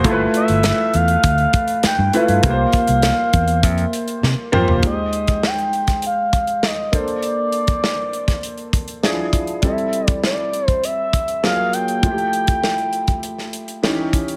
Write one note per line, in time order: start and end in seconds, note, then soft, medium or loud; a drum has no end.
0.04 0.25 G1 loud
0.04 1.00 A3 medium
0.04 1.00 E4 medium
0.04 1.00 F4 medium
0.04 0.11 A4 medium
0.04 kick loud
0.04 closed hi-hat medium
0.11 1.03 B4 medium
0.34 0.97 E5 medium
0.34 closed hi-hat medium
0.48 0.70 G1 loud
0.48 closed hi-hat medium
0.63 snare loud
0.63 closed hi-hat medium
0.94 1.15 E2 medium
0.94 1.85 F5 loud
0.94 closed hi-hat medium
1.08 closed hi-hat medium
1.23 1.45 D2 medium
1.23 kick medium
1.23 closed hi-hat medium
1.38 closed hi-hat soft
1.53 kick loud
1.53 closed hi-hat medium
1.68 closed hi-hat soft
1.83 2.13 G5 loud
1.83 muted fingered electric bass stroke soft
1.83 snare loud
1.83 closed hi-hat medium
1.99 2.09 G2 loud
2.13 2.38 A3 medium
2.13 2.38 E4 medium
2.13 2.38 F4 medium
2.13 2.38 B4 medium
2.13 3.64 F5 loud
2.13 closed hi-hat medium
2.28 2.39 G2 medium
2.28 closed hi-hat medium
2.43 2.64 C2 loud
2.43 3.39 A#3 medium
2.43 3.39 F4 medium
2.43 3.39 G4 medium
2.43 2.51 B4 medium
2.43 kick loud
2.43 closed hi-hat medium
2.50 3.43 C5 medium
2.72 kick loud
2.72 closed hi-hat medium
2.87 3.10 C2 medium
2.87 closed hi-hat medium
3.02 snare loud
3.02 closed hi-hat medium
3.33 3.63 E2 medium
3.33 kick medium
3.33 closed hi-hat medium
3.48 closed hi-hat medium
3.63 3.84 F2 loud
3.63 4.51 E5 loud
3.63 kick medium
3.63 closed hi-hat medium
3.78 closed hi-hat soft
3.93 closed hi-hat medium
4.08 closed hi-hat medium
4.23 4.34 C3 medium
4.23 snare medium
4.52 4.64 F2 medium
4.52 4.77 A#3 medium
4.52 4.77 F4 medium
4.52 4.77 G4 medium
4.52 4.77 C5 loud
4.52 mid tom medium
4.68 4.79 F1 medium
4.68 floor tom medium
4.82 6.88 G#3 medium
4.82 6.89 D#4 soft
4.82 6.89 G4 medium
4.82 kick loud
4.82 closed hi-hat medium
4.86 5.48 D#5 loud
5.13 closed hi-hat medium
5.27 kick medium
5.27 closed hi-hat medium
5.43 6.05 G5 loud
5.43 snare medium
5.58 closed hi-hat soft
5.73 closed hi-hat soft
5.87 kick medium
5.87 snare soft
5.87 closed hi-hat soft
6.02 closed hi-hat medium
6.06 6.67 F5 loud
6.33 kick medium
6.33 closed hi-hat medium
6.47 closed hi-hat soft
6.63 6.98 D#5 medium
6.63 snare medium
6.92 8.99 A#3 medium
6.92 8.99 D4 soft
6.92 8.99 A4 medium
6.92 9.00 C5 medium
6.92 kick medium
6.92 closed hi-hat medium
6.96 9.35 D5 medium
7.08 closed hi-hat soft
7.23 closed hi-hat medium
7.52 closed hi-hat medium
7.67 kick medium
7.67 closed hi-hat medium
7.84 snare medium
8.13 closed hi-hat soft
8.28 kick medium
8.28 snare soft
8.28 closed hi-hat soft
8.43 closed hi-hat medium
8.58 closed hi-hat soft
8.73 kick medium
8.73 closed hi-hat medium
8.88 closed hi-hat soft
9.03 9.63 F3 medium
9.03 9.63 D4 medium
9.03 9.62 E4 medium
9.03 9.64 G#4 medium
9.03 snare medium
9.33 kick medium
9.33 closed hi-hat medium
9.47 closed hi-hat soft
9.62 11.39 G3 medium
9.62 11.39 C4 medium
9.62 11.40 E4 medium
9.62 11.40 A4 medium
9.62 10.08 E5 medium
9.62 kick medium
9.62 closed hi-hat medium
9.78 closed hi-hat soft
9.93 closed hi-hat medium
10.07 10.20 D5 medium
10.07 kick medium
10.07 closed hi-hat medium
10.24 10.68 D5 medium
10.24 snare medium
10.53 closed hi-hat soft
10.68 10.86 C5 medium
10.68 kick medium
10.68 closed hi-hat soft
10.84 11.44 E5 loud
10.84 closed hi-hat medium
11.13 kick medium
11.13 closed hi-hat medium
11.28 closed hi-hat soft
11.43 12.03 F#3 medium
11.43 12.03 A#3 soft
11.43 12.03 F4 soft
11.43 12.04 G#4 medium
11.43 11.75 F5 medium
11.43 snare medium
11.73 14.13 G5 loud
11.73 closed hi-hat medium
11.88 closed hi-hat soft
12.02 13.79 F3 medium
12.02 13.80 A3 soft
12.02 13.80 E4 soft
12.02 12.11 F4 medium
12.02 kick medium
12.02 closed hi-hat medium
12.11 13.82 G4 medium
12.18 closed hi-hat soft
12.33 closed hi-hat medium
12.47 kick medium
12.47 closed hi-hat medium
12.64 snare medium
12.78 closed hi-hat soft
12.93 closed hi-hat soft
13.08 kick medium
13.08 closed hi-hat soft
13.23 closed hi-hat medium
13.38 snare soft
13.53 closed hi-hat medium
13.68 closed hi-hat soft
13.83 14.37 E3 medium
13.83 14.37 C#4 medium
13.83 14.37 D#4 medium
13.83 14.37 G4 medium
13.83 snare medium
14.13 kick medium
14.13 closed hi-hat medium
14.28 closed hi-hat soft